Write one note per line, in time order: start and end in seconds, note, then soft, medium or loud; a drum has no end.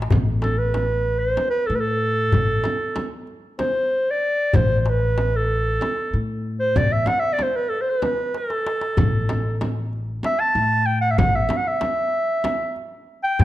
0.02 darbuka ka medium
0.10 1.34 A1 medium
0.10 darbuka dum loud
0.10 frame drum loud
0.42 0.59 A4 medium
0.42 darbuka tek medium
0.42 frame drum medium
0.58 1.20 B4 medium
0.74 darbuka tek medium
0.74 frame drum medium
1.06 darbuka ka soft
1.19 1.49 C5 medium
1.37 darbuka tek medium
1.37 frame drum medium
1.50 1.68 B4 medium
1.66 2.29 A2 medium
1.66 1.77 A4 medium
1.66 darbuka ka soft
1.75 1.81 B4 medium
1.80 3.16 A4 medium
2.32 2.62 A1 medium
2.32 darbuka dum medium
2.32 frame drum medium
2.64 darbuka tek medium
2.64 frame drum medium
2.96 darbuka tek medium
2.96 frame drum medium
3.27 darbuka ka soft
3.59 4.12 C5 medium
3.59 darbuka tek medium
3.59 frame drum medium
3.91 darbuka ka soft
4.11 4.57 D5 medium
4.53 5.78 A1 loud
4.53 4.80 C5 medium
4.53 darbuka dum loud
4.53 frame drum loud
4.80 4.91 C5 medium
4.86 darbuka tek medium
4.90 5.38 B4 medium
5.18 darbuka tek medium
5.18 frame drum medium
5.36 6.30 A4 medium
5.51 darbuka ka soft
5.81 darbuka tek medium
5.81 frame drum medium
6.13 6.73 A2 medium
6.13 darbuka ka soft
6.59 6.79 C5 medium
6.76 7.06 A1 medium
6.76 6.94 D5 medium
6.76 frame drum loud
6.76 darbuka dum medium
6.92 7.08 E5 medium
7.06 7.21 F#5 medium
7.06 darbuka tek medium
7.06 frame drum medium
7.19 7.35 E5 medium
7.33 7.44 D5 medium
7.39 7.58 C5 medium
7.39 darbuka tek medium
7.39 frame drum medium
7.56 7.70 B4 medium
7.69 7.83 A4 medium
7.69 darbuka ka soft
7.81 7.90 C5 medium
7.90 8.02 C5 medium
8.02 8.39 B4 medium
8.02 darbuka tek medium
8.02 frame drum medium
8.34 8.52 A#4 medium
8.34 darbuka tek soft
8.50 9.65 A4 medium
8.50 darbuka ka medium
8.67 darbuka tek medium
8.81 darbuka ka medium
8.97 10.20 A1 medium
8.97 darbuka dum loud
8.97 frame drum loud
9.29 darbuka tek medium
9.29 frame drum medium
9.61 darbuka tek medium
9.61 frame drum medium
9.93 darbuka ka soft
10.23 10.41 E5 loud
10.23 darbuka tek medium
10.23 frame drum medium
10.40 10.88 A5 loud
10.55 11.14 A2 medium
10.55 darbuka ka soft
10.86 11.01 G5 medium
11.01 11.12 F#5 medium
11.10 11.19 E5 medium
11.17 11.48 A1 medium
11.17 11.37 F#5 medium
11.17 darbuka dum medium
11.17 frame drum loud
11.35 11.58 E5 medium
11.49 darbuka tek medium
11.49 frame drum medium
11.56 11.69 F#5 medium
11.67 12.92 E5 medium
11.81 darbuka tek medium
11.81 frame drum medium
12.14 darbuka ka soft
12.44 darbuka tek medium
12.44 frame drum medium
12.76 darbuka ka soft
13.24 13.43 G5 loud
13.39 13.44 A1 medium
13.39 13.44 A5 loud
13.39 frame drum medium
13.39 darbuka dum loud